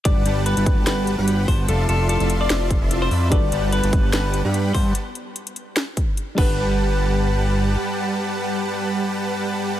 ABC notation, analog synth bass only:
X:1
M:4/4
L:1/16
Q:"Swing 16ths" 1/4=147
K:G
V:1 name="Analog synth bass" clef=bass
G,,,2 G,,,3 G,,,3 G,,,3 G,,,3 G,,,2 | =F,,,2 F,,,3 F,,,3 F,,,3 F,,,3 =F,,2 | G,,,2 G,,,3 G,,,3 G,,,3 G,,3 G,,2 | z12 z2 G,,,2- |
G,,,12 z4 | z16 |]